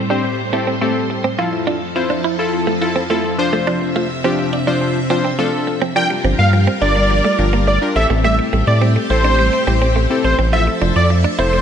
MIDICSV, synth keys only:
0, 0, Header, 1, 2, 480
1, 0, Start_track
1, 0, Tempo, 571429
1, 1165, Time_signature, 4, 2, 24, 8
1, 9758, End_track
2, 0, Start_track
2, 0, Title_t, "Synth keys"
2, 0, Program_c, 0, 88
2, 83, Note_on_c, 0, 60, 91
2, 85, Note_on_c, 0, 67, 80
2, 87, Note_on_c, 0, 72, 97
2, 350, Note_off_c, 0, 60, 0
2, 351, Note_off_c, 0, 67, 0
2, 352, Note_off_c, 0, 72, 0
2, 442, Note_on_c, 0, 60, 88
2, 444, Note_on_c, 0, 67, 77
2, 446, Note_on_c, 0, 69, 96
2, 621, Note_off_c, 0, 60, 0
2, 622, Note_off_c, 0, 67, 0
2, 623, Note_off_c, 0, 69, 0
2, 683, Note_on_c, 0, 60, 86
2, 685, Note_on_c, 0, 67, 81
2, 686, Note_on_c, 0, 69, 98
2, 1038, Note_off_c, 0, 60, 0
2, 1039, Note_off_c, 0, 67, 0
2, 1040, Note_off_c, 0, 69, 0
2, 1162, Note_on_c, 0, 64, 84
2, 1164, Note_on_c, 0, 65, 78
2, 1167, Note_on_c, 0, 69, 93
2, 1518, Note_off_c, 0, 64, 0
2, 1519, Note_off_c, 0, 65, 0
2, 1520, Note_off_c, 0, 69, 0
2, 1643, Note_on_c, 0, 64, 87
2, 1646, Note_on_c, 0, 65, 84
2, 1647, Note_on_c, 0, 72, 98
2, 1910, Note_off_c, 0, 64, 0
2, 1911, Note_off_c, 0, 65, 0
2, 1912, Note_off_c, 0, 72, 0
2, 2004, Note_on_c, 0, 64, 87
2, 2006, Note_on_c, 0, 65, 83
2, 2008, Note_on_c, 0, 69, 101
2, 2270, Note_off_c, 0, 64, 0
2, 2272, Note_off_c, 0, 65, 0
2, 2273, Note_off_c, 0, 69, 0
2, 2363, Note_on_c, 0, 64, 89
2, 2364, Note_on_c, 0, 65, 74
2, 2367, Note_on_c, 0, 69, 98
2, 2541, Note_off_c, 0, 64, 0
2, 2542, Note_off_c, 0, 65, 0
2, 2543, Note_off_c, 0, 69, 0
2, 2603, Note_on_c, 0, 64, 89
2, 2604, Note_on_c, 0, 65, 83
2, 2607, Note_on_c, 0, 69, 103
2, 2835, Note_off_c, 0, 65, 0
2, 2842, Note_on_c, 0, 53, 100
2, 2844, Note_off_c, 0, 64, 0
2, 2844, Note_on_c, 0, 62, 84
2, 2845, Note_on_c, 0, 65, 88
2, 2846, Note_off_c, 0, 69, 0
2, 2846, Note_on_c, 0, 72, 107
2, 3420, Note_off_c, 0, 53, 0
2, 3421, Note_off_c, 0, 62, 0
2, 3421, Note_off_c, 0, 65, 0
2, 3422, Note_off_c, 0, 72, 0
2, 3564, Note_on_c, 0, 53, 88
2, 3565, Note_on_c, 0, 62, 80
2, 3566, Note_on_c, 0, 65, 81
2, 3568, Note_on_c, 0, 67, 98
2, 3830, Note_off_c, 0, 53, 0
2, 3831, Note_off_c, 0, 62, 0
2, 3831, Note_off_c, 0, 65, 0
2, 3832, Note_off_c, 0, 67, 0
2, 3924, Note_on_c, 0, 53, 94
2, 3925, Note_on_c, 0, 62, 83
2, 3926, Note_on_c, 0, 65, 82
2, 3928, Note_on_c, 0, 72, 95
2, 4190, Note_off_c, 0, 53, 0
2, 4191, Note_off_c, 0, 62, 0
2, 4191, Note_off_c, 0, 65, 0
2, 4192, Note_off_c, 0, 72, 0
2, 4283, Note_on_c, 0, 53, 88
2, 4285, Note_on_c, 0, 62, 77
2, 4286, Note_on_c, 0, 65, 80
2, 4288, Note_on_c, 0, 72, 97
2, 4462, Note_off_c, 0, 53, 0
2, 4462, Note_off_c, 0, 62, 0
2, 4463, Note_off_c, 0, 65, 0
2, 4464, Note_off_c, 0, 72, 0
2, 4523, Note_on_c, 0, 53, 91
2, 4525, Note_on_c, 0, 62, 81
2, 4526, Note_on_c, 0, 65, 82
2, 4528, Note_on_c, 0, 69, 99
2, 4878, Note_off_c, 0, 53, 0
2, 4879, Note_off_c, 0, 62, 0
2, 4880, Note_off_c, 0, 65, 0
2, 4881, Note_off_c, 0, 69, 0
2, 5004, Note_on_c, 0, 62, 75
2, 5005, Note_on_c, 0, 65, 68
2, 5006, Note_on_c, 0, 67, 68
2, 5008, Note_on_c, 0, 70, 84
2, 5536, Note_off_c, 0, 62, 0
2, 5536, Note_off_c, 0, 65, 0
2, 5537, Note_off_c, 0, 67, 0
2, 5538, Note_off_c, 0, 70, 0
2, 5725, Note_on_c, 0, 62, 75
2, 5726, Note_on_c, 0, 65, 72
2, 5728, Note_on_c, 0, 67, 70
2, 5729, Note_on_c, 0, 70, 88
2, 6079, Note_off_c, 0, 62, 0
2, 6080, Note_off_c, 0, 65, 0
2, 6081, Note_off_c, 0, 67, 0
2, 6081, Note_off_c, 0, 70, 0
2, 6204, Note_on_c, 0, 62, 76
2, 6205, Note_on_c, 0, 65, 69
2, 6206, Note_on_c, 0, 67, 70
2, 6208, Note_on_c, 0, 70, 80
2, 6470, Note_off_c, 0, 62, 0
2, 6471, Note_off_c, 0, 65, 0
2, 6472, Note_off_c, 0, 67, 0
2, 6472, Note_off_c, 0, 70, 0
2, 6565, Note_on_c, 0, 62, 83
2, 6566, Note_on_c, 0, 65, 78
2, 6568, Note_on_c, 0, 67, 76
2, 6569, Note_on_c, 0, 70, 91
2, 6676, Note_off_c, 0, 67, 0
2, 6684, Note_on_c, 0, 60, 80
2, 6685, Note_off_c, 0, 62, 0
2, 6685, Note_on_c, 0, 64, 76
2, 6686, Note_off_c, 0, 65, 0
2, 6686, Note_on_c, 0, 67, 78
2, 6687, Note_off_c, 0, 70, 0
2, 6688, Note_on_c, 0, 69, 92
2, 7452, Note_off_c, 0, 60, 0
2, 7453, Note_off_c, 0, 64, 0
2, 7454, Note_off_c, 0, 67, 0
2, 7455, Note_off_c, 0, 69, 0
2, 7643, Note_on_c, 0, 60, 80
2, 7644, Note_on_c, 0, 64, 72
2, 7646, Note_on_c, 0, 67, 71
2, 7647, Note_on_c, 0, 69, 86
2, 7998, Note_off_c, 0, 60, 0
2, 7999, Note_off_c, 0, 64, 0
2, 8000, Note_off_c, 0, 67, 0
2, 8000, Note_off_c, 0, 69, 0
2, 8123, Note_on_c, 0, 60, 75
2, 8125, Note_on_c, 0, 64, 70
2, 8126, Note_on_c, 0, 67, 71
2, 8128, Note_on_c, 0, 72, 84
2, 8390, Note_off_c, 0, 60, 0
2, 8391, Note_off_c, 0, 64, 0
2, 8391, Note_off_c, 0, 67, 0
2, 8392, Note_off_c, 0, 72, 0
2, 8484, Note_on_c, 0, 60, 84
2, 8485, Note_on_c, 0, 64, 75
2, 8486, Note_on_c, 0, 67, 76
2, 8488, Note_on_c, 0, 69, 89
2, 8750, Note_off_c, 0, 60, 0
2, 8751, Note_off_c, 0, 64, 0
2, 8751, Note_off_c, 0, 67, 0
2, 8752, Note_off_c, 0, 69, 0
2, 8844, Note_on_c, 0, 60, 73
2, 8845, Note_on_c, 0, 64, 69
2, 8847, Note_on_c, 0, 65, 69
2, 8848, Note_on_c, 0, 69, 85
2, 9376, Note_off_c, 0, 60, 0
2, 9377, Note_off_c, 0, 64, 0
2, 9377, Note_off_c, 0, 65, 0
2, 9378, Note_off_c, 0, 69, 0
2, 9563, Note_on_c, 0, 60, 80
2, 9564, Note_on_c, 0, 64, 73
2, 9566, Note_on_c, 0, 65, 71
2, 9567, Note_on_c, 0, 69, 86
2, 9758, Note_off_c, 0, 60, 0
2, 9758, Note_off_c, 0, 64, 0
2, 9758, Note_off_c, 0, 65, 0
2, 9758, Note_off_c, 0, 69, 0
2, 9758, End_track
0, 0, End_of_file